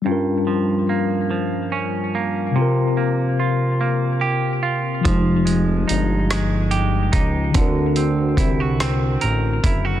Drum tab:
HH |------|------|xxxxxx|xxxxxx|
SD |------|------|---r--|---r--|
BD |------|------|o----o|o-o--o|